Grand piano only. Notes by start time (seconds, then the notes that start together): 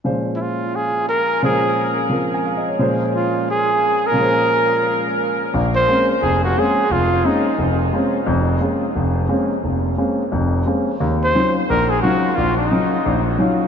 0.04 A#2 F3 G#3 C#4 C5
1.42 A#2 F3 G#3 C#4 C5
2.10 F3 C4 A#4
2.34 G#5
2.45 F5
2.57 D#5
2.68 C#5
2.79 A#2 F3 G#3 C#4 C5
4.11 A#2 F3
4.16 G#3 C#4
4.22 C5
5.54 A#1 A#2
5.88 G#3 A#3 C4 C#4
6.22 F1
6.56 G#3 A#3 C4 C#4
6.90 F1
7.25 G#3 A#3 C4 C#4
7.58 F1
7.93 G#3 A#3 C4 C#4
8.27 F1 F2
8.61 G#3 A#3 C4 C#4
8.96 F1
9.29 G#3 A#3 C4 C#4
9.64 F1
9.98 G#3 A#3 C4 C#4
10.32 F1 F2
10.66 G#3 A#3 C4 C#4
11.00 D#2
11.35 F#3 C#4 D#4 F4
11.70 A#1
12.03 F#3 C#4 D#4 F4
12.37 A#1
12.71 F#3 C#4 D#4 F4
13.06 A#1
13.39 F#3 C#4 D#4 F4